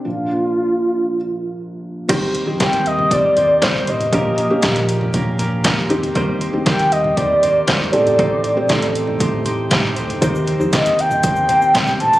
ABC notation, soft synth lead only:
X:1
M:4/4
L:1/8
Q:1/4=118
K:Eblyd
V:1 name="Soft synth lead"
F6 z2 | z2 g e d2 c e- | e3 z4 z | z2 g e d2 c d- |
d3 z4 z | z2 e g g3 a |]